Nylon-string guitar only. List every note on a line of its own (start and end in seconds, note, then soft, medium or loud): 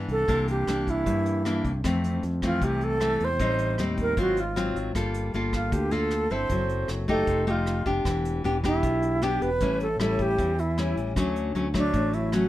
0.00 0.27 G2 medium
0.00 0.25 E3 soft
0.00 0.25 B3 soft
0.00 0.25 D4 medium
0.28 1.04 C3 soft
0.28 0.64 E3 soft
0.28 0.64 A#3 medium
0.28 0.65 D4 medium
0.68 1.42 E3 soft
0.68 1.43 A#3 medium
0.68 1.43 D4 medium
1.06 1.82 G2 medium
1.45 1.70 E3 soft
1.45 1.71 A#3 medium
1.45 1.71 D4 medium
1.84 2.60 F2 medium
1.84 2.23 E3 medium
1.84 2.23 A3 soft
1.84 2.23 C4 medium
2.43 2.98 E3 medium
2.43 2.98 A3 medium
2.43 2.98 C4 medium
2.62 3.38 C3 soft
3.00 3.27 E3 medium
3.00 3.27 A3 medium
3.00 3.27 C4 medium
3.40 4.15 A2 soft
3.40 3.75 G3 soft
3.40 3.76 C4 medium
3.40 3.76 D#4 medium
3.79 4.16 G3 soft
3.79 4.16 C4 soft
3.79 4.16 D#4 soft
4.18 4.93 G#2 medium
4.18 4.43 F#3 soft
4.18 4.43 C4 medium
4.18 4.43 F4 medium
4.56 4.92 F#3 medium
4.56 4.92 C4 medium
4.56 4.92 F4 medium
4.95 5.71 G3 soft
4.95 5.31 A#3 medium
4.95 5.31 F4 soft
4.95 5.31 A4 medium
5.34 5.89 A#3 medium
5.34 5.90 F4 soft
5.34 5.90 A4 medium
5.72 6.48 D3 medium
5.91 6.27 A#3 medium
5.91 6.28 F4 medium
5.91 6.28 A4 medium
6.31 7.05 C4 medium
6.31 7.06 E4 soft
6.31 7.06 A4 medium
6.51 7.27 F#3 soft
7.08 7.44 A3 medium
7.08 7.45 D#4 medium
7.08 7.45 G4 medium
7.27 8.03 F3 soft
7.47 7.83 A3 medium
7.47 7.83 D#4 medium
7.47 7.83 G4 medium
7.86 8.41 B3 soft
7.86 8.41 D4 medium
7.86 8.41 G4 medium
8.06 8.82 E3 medium
8.44 8.56 B3 soft
8.44 8.56 D4 medium
8.44 8.56 G4 medium
8.64 9.19 B3 medium
8.64 9.19 D4 medium
8.64 9.20 G4 medium
8.83 9.59 B2 medium
9.22 9.48 B3 medium
9.22 9.49 D4 medium
9.22 9.49 G4 medium
9.61 10.37 A2 medium
9.61 9.86 G3 medium
9.61 9.86 C#4 soft
9.61 9.86 E4 medium
10.00 10.52 G3 soft
10.00 10.52 C#4 soft
10.00 10.52 E4 medium
10.38 11.14 E3 medium
10.78 11.13 G3 medium
10.78 11.14 C#4 medium
10.78 11.14 E4 medium
11.16 11.92 D3 medium
11.16 11.52 F#3 medium
11.16 11.52 A3 soft
11.16 11.52 C#4 medium
11.55 11.66 F#3 medium
11.55 11.67 A3 medium
11.55 11.67 C#4 medium
11.74 12.29 F#3 medium
11.74 12.30 A3 medium
11.93 12.48 A2 medium
12.33 12.48 F#3 medium
12.33 12.48 A3 medium
12.33 12.48 C#4 medium